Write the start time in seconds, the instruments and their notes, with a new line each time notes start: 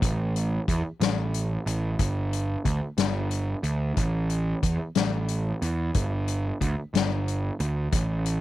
0.02 picked electric bass A1, kick, closed hi-hat
0.36 closed hi-hat
0.68 picked electric bass E2, kick, closed hi-hat
1.00 picked electric bass A1, snare, closed hi-hat
1.34 closed hi-hat
1.66 picked electric bass A1, closed hi-hat
1.99 picked electric bass G1, kick, closed hi-hat
2.33 closed hi-hat
2.65 picked electric bass D2, kick, closed hi-hat
2.98 picked electric bass G1, snare, closed hi-hat
3.31 closed hi-hat
3.63 picked electric bass D2, closed hi-hat
3.97 picked electric bass A1, kick, closed hi-hat
4.30 closed hi-hat
4.63 picked electric bass E2, kick, closed hi-hat
4.95 picked electric bass A1, snare, closed hi-hat
5.28 closed hi-hat
5.62 picked electric bass E2, closed hi-hat
5.94 picked electric bass G1, kick, closed hi-hat
6.28 closed hi-hat
6.61 picked electric bass D2, kick, closed hi-hat
6.94 picked electric bass G1, snare, closed hi-hat
7.28 closed hi-hat
7.60 picked electric bass D2, closed hi-hat
7.92 picked electric bass A1, kick, closed hi-hat
8.26 closed hi-hat